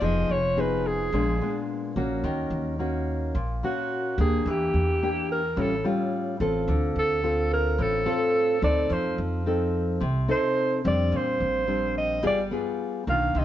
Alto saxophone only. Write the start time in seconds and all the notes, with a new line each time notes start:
0.05 D#5
0.32 C#5
0.60 B4
0.87 G#4
3.65 F#4
4.21 G#4
4.50 G4
5.32 A#4
5.61 A4
6.99 A4
7.54 A#4
7.82 A4
8.64 D5
8.93 C5
10.31 C5
10.88 D5
11.17 C5
11.98 D#5
12.27 D5
13.10 F5
13.39 D#5